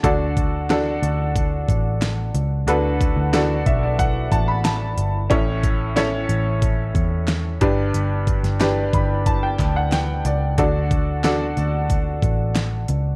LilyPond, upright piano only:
\new Staff \with { instrumentName = "Upright piano" } { \time 4/4 \key d \major \tempo 4 = 91 << { d4. r2 r8 | d4. e''16 d''16 fis''8 a''16 b''16 a''4 | a,4. r2 g,8~ | g,4 r8 b''8 a''16 g''8 fis''16 g''8 d''8 |
d4. r2 r8 | } \\ { <d' fis' a' d''>4 <d' fis' a' d''>4. r4. | <d' fis' a' b'>4 <d' fis' a' d''>4. r4. | <cis' e' a' cis''>4 <cis' e' a' cis''>4. r4 <d' g' b' d''>8~ | <d' g' b' d''>8 r8 <d' g' b' d''>4. r4. |
<d' fis' a' d''>4 <d' fis' a' d''>4. r4. | } >> }